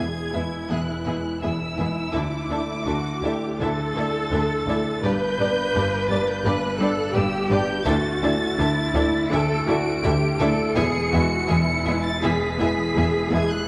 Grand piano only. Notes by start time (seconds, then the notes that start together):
Already playing: E1 E2 G#3 E4 B4
0.34 G#3 E4 B4
0.70 E1 E2
1.08 G#3 E4 B4
1.44 E1 E2
1.80 G#3 E4 B4
2.15 D2 D3
2.52 A3 E4 D5
2.87 D2 D3
3.24 A3 E4 D5
3.62 D2 D3
3.98 A3 E4 D5
4.31 D2 D3
4.67 A3 E4 D5
5.04 G1 G2
5.40 B3 D4 D5
5.75 G1 G2
6.11 B3 D4 D5
6.46 G1 G2
6.82 B3 D4 D5
7.17 G1 G2
7.52 B3 D4 D5
7.88 D2 D3
8.23 A3 E4 D5
8.58 D2 D3
8.94 A3 E4 D5
9.32 D2 D3
9.68 A3 E4 D5
10.05 D2 D3
10.42 A3 E4 D5
10.77 E1 E2
11.14 G#3 E4 B4
11.50 E1 E2
11.88 G#3 E4 B4
12.24 E1 E2
12.60 G#3 E4 B4
12.97 E1 E2
13.32 G#3 E4 B4